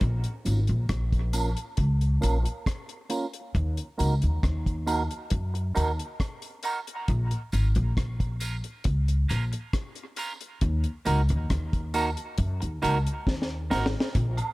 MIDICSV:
0, 0, Header, 1, 5, 480
1, 0, Start_track
1, 0, Key_signature, -5, "minor"
1, 0, Tempo, 883652
1, 7, Time_signature, 4, 2, 24, 8
1, 7894, End_track
2, 0, Start_track
2, 0, Title_t, "Clean electric guitar"
2, 0, Program_c, 0, 27
2, 243, Note_on_c, 0, 58, 65
2, 244, Note_on_c, 0, 61, 67
2, 246, Note_on_c, 0, 65, 77
2, 247, Note_on_c, 0, 70, 72
2, 325, Note_off_c, 0, 58, 0
2, 325, Note_off_c, 0, 61, 0
2, 326, Note_off_c, 0, 65, 0
2, 327, Note_off_c, 0, 70, 0
2, 723, Note_on_c, 0, 58, 64
2, 728, Note_on_c, 0, 61, 77
2, 730, Note_on_c, 0, 65, 77
2, 731, Note_on_c, 0, 70, 82
2, 804, Note_off_c, 0, 58, 0
2, 807, Note_off_c, 0, 61, 0
2, 808, Note_off_c, 0, 65, 0
2, 809, Note_off_c, 0, 70, 0
2, 1200, Note_on_c, 0, 58, 82
2, 1200, Note_on_c, 0, 61, 81
2, 1202, Note_on_c, 0, 65, 85
2, 1204, Note_on_c, 0, 70, 95
2, 1283, Note_off_c, 0, 58, 0
2, 1283, Note_off_c, 0, 61, 0
2, 1284, Note_off_c, 0, 65, 0
2, 1285, Note_off_c, 0, 70, 0
2, 1681, Note_on_c, 0, 58, 76
2, 1683, Note_on_c, 0, 61, 86
2, 1684, Note_on_c, 0, 65, 87
2, 1688, Note_on_c, 0, 70, 85
2, 1764, Note_off_c, 0, 58, 0
2, 1765, Note_off_c, 0, 61, 0
2, 1765, Note_off_c, 0, 65, 0
2, 1767, Note_off_c, 0, 70, 0
2, 2160, Note_on_c, 0, 58, 69
2, 2163, Note_on_c, 0, 63, 72
2, 2164, Note_on_c, 0, 66, 78
2, 2166, Note_on_c, 0, 70, 83
2, 2243, Note_off_c, 0, 58, 0
2, 2245, Note_off_c, 0, 63, 0
2, 2245, Note_off_c, 0, 66, 0
2, 2246, Note_off_c, 0, 70, 0
2, 2643, Note_on_c, 0, 58, 80
2, 2644, Note_on_c, 0, 63, 86
2, 2647, Note_on_c, 0, 66, 82
2, 2648, Note_on_c, 0, 70, 91
2, 2725, Note_off_c, 0, 58, 0
2, 2725, Note_off_c, 0, 63, 0
2, 2727, Note_off_c, 0, 66, 0
2, 2727, Note_off_c, 0, 70, 0
2, 3121, Note_on_c, 0, 58, 75
2, 3122, Note_on_c, 0, 63, 86
2, 3125, Note_on_c, 0, 66, 77
2, 3130, Note_on_c, 0, 70, 87
2, 3204, Note_off_c, 0, 58, 0
2, 3204, Note_off_c, 0, 63, 0
2, 3206, Note_off_c, 0, 66, 0
2, 3208, Note_off_c, 0, 70, 0
2, 3604, Note_on_c, 0, 58, 71
2, 3607, Note_on_c, 0, 63, 83
2, 3609, Note_on_c, 0, 66, 81
2, 3614, Note_on_c, 0, 70, 98
2, 3686, Note_off_c, 0, 58, 0
2, 3687, Note_off_c, 0, 63, 0
2, 3688, Note_off_c, 0, 66, 0
2, 3690, Note_off_c, 0, 70, 0
2, 4087, Note_on_c, 0, 58, 70
2, 4089, Note_on_c, 0, 61, 68
2, 4090, Note_on_c, 0, 65, 73
2, 4091, Note_on_c, 0, 70, 85
2, 4167, Note_off_c, 0, 58, 0
2, 4168, Note_off_c, 0, 61, 0
2, 4168, Note_off_c, 0, 65, 0
2, 4169, Note_off_c, 0, 70, 0
2, 4563, Note_on_c, 0, 58, 69
2, 4567, Note_on_c, 0, 61, 91
2, 4569, Note_on_c, 0, 65, 89
2, 4571, Note_on_c, 0, 70, 82
2, 4645, Note_off_c, 0, 58, 0
2, 4647, Note_off_c, 0, 61, 0
2, 4648, Note_off_c, 0, 65, 0
2, 4649, Note_off_c, 0, 70, 0
2, 5044, Note_on_c, 0, 58, 89
2, 5046, Note_on_c, 0, 61, 89
2, 5049, Note_on_c, 0, 65, 89
2, 5050, Note_on_c, 0, 70, 85
2, 5125, Note_off_c, 0, 58, 0
2, 5127, Note_off_c, 0, 61, 0
2, 5128, Note_off_c, 0, 65, 0
2, 5129, Note_off_c, 0, 70, 0
2, 5524, Note_on_c, 0, 58, 80
2, 5526, Note_on_c, 0, 61, 81
2, 5529, Note_on_c, 0, 65, 79
2, 5532, Note_on_c, 0, 70, 85
2, 5606, Note_off_c, 0, 58, 0
2, 5606, Note_off_c, 0, 61, 0
2, 5608, Note_off_c, 0, 65, 0
2, 5610, Note_off_c, 0, 70, 0
2, 6003, Note_on_c, 0, 58, 68
2, 6006, Note_on_c, 0, 63, 76
2, 6009, Note_on_c, 0, 66, 73
2, 6011, Note_on_c, 0, 70, 75
2, 6085, Note_off_c, 0, 58, 0
2, 6087, Note_off_c, 0, 63, 0
2, 6088, Note_off_c, 0, 66, 0
2, 6089, Note_off_c, 0, 70, 0
2, 6486, Note_on_c, 0, 58, 71
2, 6488, Note_on_c, 0, 63, 75
2, 6488, Note_on_c, 0, 66, 78
2, 6494, Note_on_c, 0, 70, 76
2, 6567, Note_off_c, 0, 58, 0
2, 6568, Note_off_c, 0, 63, 0
2, 6568, Note_off_c, 0, 66, 0
2, 6571, Note_off_c, 0, 70, 0
2, 6964, Note_on_c, 0, 58, 68
2, 6964, Note_on_c, 0, 63, 84
2, 6968, Note_on_c, 0, 66, 84
2, 6968, Note_on_c, 0, 70, 95
2, 7045, Note_off_c, 0, 58, 0
2, 7045, Note_off_c, 0, 63, 0
2, 7047, Note_off_c, 0, 66, 0
2, 7048, Note_off_c, 0, 70, 0
2, 7443, Note_on_c, 0, 58, 78
2, 7444, Note_on_c, 0, 63, 74
2, 7447, Note_on_c, 0, 66, 80
2, 7449, Note_on_c, 0, 70, 93
2, 7525, Note_off_c, 0, 58, 0
2, 7525, Note_off_c, 0, 63, 0
2, 7527, Note_off_c, 0, 66, 0
2, 7528, Note_off_c, 0, 70, 0
2, 7894, End_track
3, 0, Start_track
3, 0, Title_t, "Upright bass"
3, 0, Program_c, 1, 32
3, 10, Note_on_c, 1, 34, 95
3, 127, Note_off_c, 1, 34, 0
3, 250, Note_on_c, 1, 32, 85
3, 367, Note_off_c, 1, 32, 0
3, 376, Note_on_c, 1, 34, 88
3, 482, Note_off_c, 1, 34, 0
3, 489, Note_on_c, 1, 34, 80
3, 832, Note_off_c, 1, 34, 0
3, 968, Note_on_c, 1, 37, 75
3, 1193, Note_off_c, 1, 37, 0
3, 1213, Note_on_c, 1, 34, 81
3, 1329, Note_off_c, 1, 34, 0
3, 1930, Note_on_c, 1, 39, 97
3, 2047, Note_off_c, 1, 39, 0
3, 2172, Note_on_c, 1, 37, 81
3, 2288, Note_off_c, 1, 37, 0
3, 2300, Note_on_c, 1, 39, 79
3, 2404, Note_off_c, 1, 39, 0
3, 2409, Note_on_c, 1, 39, 84
3, 2753, Note_off_c, 1, 39, 0
3, 2891, Note_on_c, 1, 42, 80
3, 3115, Note_off_c, 1, 42, 0
3, 3133, Note_on_c, 1, 39, 81
3, 3249, Note_off_c, 1, 39, 0
3, 3852, Note_on_c, 1, 34, 96
3, 3968, Note_off_c, 1, 34, 0
3, 4091, Note_on_c, 1, 32, 77
3, 4207, Note_off_c, 1, 32, 0
3, 4215, Note_on_c, 1, 34, 96
3, 4321, Note_off_c, 1, 34, 0
3, 4331, Note_on_c, 1, 34, 80
3, 4674, Note_off_c, 1, 34, 0
3, 4811, Note_on_c, 1, 37, 75
3, 5035, Note_off_c, 1, 37, 0
3, 5055, Note_on_c, 1, 34, 78
3, 5170, Note_off_c, 1, 34, 0
3, 5769, Note_on_c, 1, 39, 102
3, 5887, Note_off_c, 1, 39, 0
3, 6011, Note_on_c, 1, 37, 77
3, 6128, Note_off_c, 1, 37, 0
3, 6139, Note_on_c, 1, 39, 87
3, 6244, Note_off_c, 1, 39, 0
3, 6251, Note_on_c, 1, 39, 77
3, 6594, Note_off_c, 1, 39, 0
3, 6730, Note_on_c, 1, 42, 91
3, 6847, Note_off_c, 1, 42, 0
3, 6858, Note_on_c, 1, 39, 73
3, 6963, Note_off_c, 1, 39, 0
3, 6971, Note_on_c, 1, 37, 75
3, 7088, Note_off_c, 1, 37, 0
3, 7210, Note_on_c, 1, 39, 70
3, 7435, Note_off_c, 1, 39, 0
3, 7449, Note_on_c, 1, 32, 82
3, 7567, Note_off_c, 1, 32, 0
3, 7688, Note_on_c, 1, 34, 105
3, 7806, Note_off_c, 1, 34, 0
3, 7894, End_track
4, 0, Start_track
4, 0, Title_t, "Muted clean electric guitar strokes"
4, 1322, Note_on_c, 9, 29, 41
4, 1376, Note_off_c, 9, 29, 0
4, 3009, Note_on_c, 9, 29, 44
4, 3063, Note_off_c, 9, 29, 0
4, 5170, Note_on_c, 9, 29, 41
4, 5225, Note_off_c, 9, 29, 0
4, 6847, Note_on_c, 9, 29, 43
4, 6902, Note_off_c, 9, 29, 0
4, 7894, End_track
5, 0, Start_track
5, 0, Title_t, "Drums"
5, 5, Note_on_c, 9, 42, 76
5, 7, Note_on_c, 9, 36, 112
5, 59, Note_off_c, 9, 42, 0
5, 61, Note_off_c, 9, 36, 0
5, 129, Note_on_c, 9, 42, 55
5, 183, Note_off_c, 9, 42, 0
5, 247, Note_on_c, 9, 54, 53
5, 249, Note_on_c, 9, 42, 67
5, 301, Note_off_c, 9, 54, 0
5, 303, Note_off_c, 9, 42, 0
5, 366, Note_on_c, 9, 42, 43
5, 420, Note_off_c, 9, 42, 0
5, 484, Note_on_c, 9, 42, 80
5, 485, Note_on_c, 9, 36, 102
5, 485, Note_on_c, 9, 37, 108
5, 538, Note_off_c, 9, 42, 0
5, 540, Note_off_c, 9, 36, 0
5, 540, Note_off_c, 9, 37, 0
5, 611, Note_on_c, 9, 36, 82
5, 612, Note_on_c, 9, 42, 45
5, 666, Note_off_c, 9, 36, 0
5, 666, Note_off_c, 9, 42, 0
5, 723, Note_on_c, 9, 42, 63
5, 724, Note_on_c, 9, 54, 73
5, 724, Note_on_c, 9, 76, 77
5, 778, Note_off_c, 9, 42, 0
5, 779, Note_off_c, 9, 54, 0
5, 779, Note_off_c, 9, 76, 0
5, 851, Note_on_c, 9, 42, 53
5, 905, Note_off_c, 9, 42, 0
5, 962, Note_on_c, 9, 42, 76
5, 966, Note_on_c, 9, 36, 93
5, 1016, Note_off_c, 9, 42, 0
5, 1021, Note_off_c, 9, 36, 0
5, 1092, Note_on_c, 9, 42, 48
5, 1147, Note_off_c, 9, 42, 0
5, 1206, Note_on_c, 9, 54, 49
5, 1206, Note_on_c, 9, 76, 69
5, 1213, Note_on_c, 9, 42, 76
5, 1260, Note_off_c, 9, 54, 0
5, 1260, Note_off_c, 9, 76, 0
5, 1267, Note_off_c, 9, 42, 0
5, 1333, Note_on_c, 9, 42, 53
5, 1388, Note_off_c, 9, 42, 0
5, 1447, Note_on_c, 9, 36, 98
5, 1449, Note_on_c, 9, 42, 77
5, 1450, Note_on_c, 9, 37, 100
5, 1501, Note_off_c, 9, 36, 0
5, 1504, Note_off_c, 9, 37, 0
5, 1504, Note_off_c, 9, 42, 0
5, 1569, Note_on_c, 9, 42, 49
5, 1624, Note_off_c, 9, 42, 0
5, 1683, Note_on_c, 9, 42, 70
5, 1693, Note_on_c, 9, 54, 56
5, 1737, Note_off_c, 9, 42, 0
5, 1747, Note_off_c, 9, 54, 0
5, 1811, Note_on_c, 9, 42, 48
5, 1866, Note_off_c, 9, 42, 0
5, 1927, Note_on_c, 9, 36, 110
5, 1928, Note_on_c, 9, 42, 78
5, 1981, Note_off_c, 9, 36, 0
5, 1982, Note_off_c, 9, 42, 0
5, 2050, Note_on_c, 9, 42, 55
5, 2104, Note_off_c, 9, 42, 0
5, 2167, Note_on_c, 9, 54, 55
5, 2173, Note_on_c, 9, 42, 61
5, 2221, Note_off_c, 9, 54, 0
5, 2227, Note_off_c, 9, 42, 0
5, 2291, Note_on_c, 9, 42, 46
5, 2346, Note_off_c, 9, 42, 0
5, 2408, Note_on_c, 9, 36, 111
5, 2410, Note_on_c, 9, 42, 79
5, 2411, Note_on_c, 9, 37, 99
5, 2462, Note_off_c, 9, 36, 0
5, 2464, Note_off_c, 9, 42, 0
5, 2465, Note_off_c, 9, 37, 0
5, 2533, Note_on_c, 9, 36, 76
5, 2536, Note_on_c, 9, 42, 48
5, 2588, Note_off_c, 9, 36, 0
5, 2590, Note_off_c, 9, 42, 0
5, 2647, Note_on_c, 9, 54, 70
5, 2647, Note_on_c, 9, 76, 75
5, 2650, Note_on_c, 9, 42, 59
5, 2702, Note_off_c, 9, 54, 0
5, 2702, Note_off_c, 9, 76, 0
5, 2705, Note_off_c, 9, 42, 0
5, 2774, Note_on_c, 9, 42, 48
5, 2828, Note_off_c, 9, 42, 0
5, 2881, Note_on_c, 9, 42, 80
5, 2887, Note_on_c, 9, 36, 95
5, 2935, Note_off_c, 9, 42, 0
5, 2942, Note_off_c, 9, 36, 0
5, 3015, Note_on_c, 9, 42, 47
5, 3069, Note_off_c, 9, 42, 0
5, 3126, Note_on_c, 9, 54, 50
5, 3126, Note_on_c, 9, 76, 70
5, 3135, Note_on_c, 9, 42, 69
5, 3180, Note_off_c, 9, 54, 0
5, 3180, Note_off_c, 9, 76, 0
5, 3189, Note_off_c, 9, 42, 0
5, 3256, Note_on_c, 9, 42, 52
5, 3310, Note_off_c, 9, 42, 0
5, 3367, Note_on_c, 9, 36, 93
5, 3369, Note_on_c, 9, 42, 71
5, 3370, Note_on_c, 9, 37, 92
5, 3422, Note_off_c, 9, 36, 0
5, 3423, Note_off_c, 9, 42, 0
5, 3424, Note_off_c, 9, 37, 0
5, 3488, Note_on_c, 9, 42, 52
5, 3542, Note_off_c, 9, 42, 0
5, 3600, Note_on_c, 9, 42, 70
5, 3612, Note_on_c, 9, 54, 60
5, 3654, Note_off_c, 9, 42, 0
5, 3666, Note_off_c, 9, 54, 0
5, 3734, Note_on_c, 9, 42, 49
5, 3788, Note_off_c, 9, 42, 0
5, 3847, Note_on_c, 9, 42, 82
5, 3848, Note_on_c, 9, 36, 109
5, 3901, Note_off_c, 9, 42, 0
5, 3903, Note_off_c, 9, 36, 0
5, 3970, Note_on_c, 9, 42, 56
5, 4025, Note_off_c, 9, 42, 0
5, 4086, Note_on_c, 9, 54, 51
5, 4092, Note_on_c, 9, 42, 64
5, 4140, Note_off_c, 9, 54, 0
5, 4147, Note_off_c, 9, 42, 0
5, 4210, Note_on_c, 9, 42, 45
5, 4264, Note_off_c, 9, 42, 0
5, 4329, Note_on_c, 9, 36, 115
5, 4331, Note_on_c, 9, 42, 82
5, 4332, Note_on_c, 9, 37, 110
5, 4383, Note_off_c, 9, 36, 0
5, 4385, Note_off_c, 9, 42, 0
5, 4387, Note_off_c, 9, 37, 0
5, 4454, Note_on_c, 9, 36, 73
5, 4456, Note_on_c, 9, 42, 45
5, 4509, Note_off_c, 9, 36, 0
5, 4511, Note_off_c, 9, 42, 0
5, 4565, Note_on_c, 9, 54, 77
5, 4565, Note_on_c, 9, 76, 74
5, 4568, Note_on_c, 9, 42, 62
5, 4619, Note_off_c, 9, 54, 0
5, 4619, Note_off_c, 9, 76, 0
5, 4623, Note_off_c, 9, 42, 0
5, 4693, Note_on_c, 9, 42, 47
5, 4747, Note_off_c, 9, 42, 0
5, 4803, Note_on_c, 9, 42, 74
5, 4809, Note_on_c, 9, 36, 101
5, 4857, Note_off_c, 9, 42, 0
5, 4863, Note_off_c, 9, 36, 0
5, 4934, Note_on_c, 9, 42, 51
5, 4988, Note_off_c, 9, 42, 0
5, 5047, Note_on_c, 9, 54, 48
5, 5047, Note_on_c, 9, 76, 70
5, 5055, Note_on_c, 9, 42, 72
5, 5102, Note_off_c, 9, 54, 0
5, 5102, Note_off_c, 9, 76, 0
5, 5109, Note_off_c, 9, 42, 0
5, 5174, Note_on_c, 9, 42, 56
5, 5229, Note_off_c, 9, 42, 0
5, 5287, Note_on_c, 9, 36, 98
5, 5287, Note_on_c, 9, 42, 71
5, 5288, Note_on_c, 9, 37, 105
5, 5342, Note_off_c, 9, 36, 0
5, 5342, Note_off_c, 9, 37, 0
5, 5342, Note_off_c, 9, 42, 0
5, 5407, Note_on_c, 9, 42, 46
5, 5462, Note_off_c, 9, 42, 0
5, 5521, Note_on_c, 9, 42, 65
5, 5534, Note_on_c, 9, 54, 61
5, 5576, Note_off_c, 9, 42, 0
5, 5589, Note_off_c, 9, 54, 0
5, 5653, Note_on_c, 9, 42, 49
5, 5707, Note_off_c, 9, 42, 0
5, 5765, Note_on_c, 9, 42, 75
5, 5767, Note_on_c, 9, 36, 113
5, 5819, Note_off_c, 9, 42, 0
5, 5822, Note_off_c, 9, 36, 0
5, 5887, Note_on_c, 9, 42, 56
5, 5941, Note_off_c, 9, 42, 0
5, 6005, Note_on_c, 9, 54, 52
5, 6010, Note_on_c, 9, 42, 62
5, 6059, Note_off_c, 9, 54, 0
5, 6064, Note_off_c, 9, 42, 0
5, 6132, Note_on_c, 9, 42, 45
5, 6186, Note_off_c, 9, 42, 0
5, 6247, Note_on_c, 9, 42, 85
5, 6248, Note_on_c, 9, 36, 105
5, 6249, Note_on_c, 9, 37, 104
5, 6302, Note_off_c, 9, 36, 0
5, 6302, Note_off_c, 9, 42, 0
5, 6303, Note_off_c, 9, 37, 0
5, 6373, Note_on_c, 9, 36, 81
5, 6373, Note_on_c, 9, 42, 49
5, 6427, Note_off_c, 9, 36, 0
5, 6427, Note_off_c, 9, 42, 0
5, 6485, Note_on_c, 9, 54, 67
5, 6485, Note_on_c, 9, 76, 73
5, 6486, Note_on_c, 9, 42, 59
5, 6540, Note_off_c, 9, 42, 0
5, 6540, Note_off_c, 9, 54, 0
5, 6540, Note_off_c, 9, 76, 0
5, 6611, Note_on_c, 9, 42, 52
5, 6665, Note_off_c, 9, 42, 0
5, 6723, Note_on_c, 9, 42, 79
5, 6728, Note_on_c, 9, 36, 104
5, 6777, Note_off_c, 9, 42, 0
5, 6782, Note_off_c, 9, 36, 0
5, 6854, Note_on_c, 9, 42, 50
5, 6908, Note_off_c, 9, 42, 0
5, 6966, Note_on_c, 9, 54, 52
5, 6966, Note_on_c, 9, 76, 67
5, 6977, Note_on_c, 9, 42, 66
5, 7020, Note_off_c, 9, 54, 0
5, 7020, Note_off_c, 9, 76, 0
5, 7032, Note_off_c, 9, 42, 0
5, 7097, Note_on_c, 9, 42, 54
5, 7152, Note_off_c, 9, 42, 0
5, 7207, Note_on_c, 9, 36, 96
5, 7210, Note_on_c, 9, 38, 46
5, 7262, Note_off_c, 9, 36, 0
5, 7265, Note_off_c, 9, 38, 0
5, 7289, Note_on_c, 9, 38, 47
5, 7343, Note_off_c, 9, 38, 0
5, 7447, Note_on_c, 9, 54, 61
5, 7449, Note_on_c, 9, 38, 66
5, 7502, Note_off_c, 9, 54, 0
5, 7503, Note_off_c, 9, 38, 0
5, 7528, Note_on_c, 9, 38, 81
5, 7583, Note_off_c, 9, 38, 0
5, 7607, Note_on_c, 9, 38, 81
5, 7661, Note_off_c, 9, 38, 0
5, 7686, Note_on_c, 9, 42, 90
5, 7687, Note_on_c, 9, 36, 113
5, 7741, Note_off_c, 9, 36, 0
5, 7741, Note_off_c, 9, 42, 0
5, 7808, Note_on_c, 9, 76, 89
5, 7810, Note_on_c, 9, 42, 62
5, 7862, Note_off_c, 9, 76, 0
5, 7865, Note_off_c, 9, 42, 0
5, 7894, End_track
0, 0, End_of_file